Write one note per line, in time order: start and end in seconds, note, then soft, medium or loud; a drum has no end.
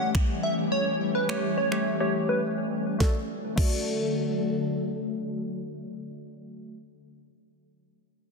0.00 2.96 E3 medium
0.00 2.96 G3 medium
0.00 0.40 A3 medium
0.00 2.96 A3 medium
0.00 2.96 C#4 medium
0.00 0.40 G4 medium
0.00 2.96 G4 medium
0.00 0.40 C#5 medium
0.00 0.10 F#5 medium
0.15 finger snap loud
0.15 kick loud
0.43 0.55 E5 medium
0.72 0.96 C#5 loud
1.15 1.39 B4 medium
1.29 1.65 A3 medium
1.29 1.65 G4 medium
1.29 1.65 C#5 medium
1.29 finger snap loud
1.58 1.69 C#5 medium
1.72 1.96 A3 medium
1.72 1.96 G4 medium
1.72 1.96 C#5 medium
1.72 finger snap medium
2.00 2.85 A3 medium
2.00 2.85 G4 medium
2.00 2.12 C#5 medium
2.00 2.85 C#5 medium
2.29 2.41 B4 medium
2.99 6.05 D3 medium
2.99 6.05 F#3 medium
2.99 3.15 A3 medium
2.99 6.05 A3 medium
2.99 6.05 F#4 medium
2.99 3.16 F#4 medium
2.99 3.16 A4 medium
2.99 6.05 A4 medium
2.99 3.17 D5 medium
2.99 kick loud
2.99 snare medium
3.56 6.74 A3 medium
3.56 6.75 F#4 medium
3.56 4.68 A4 medium
3.56 kick loud
3.56 crash medium
3.60 6.76 D5 medium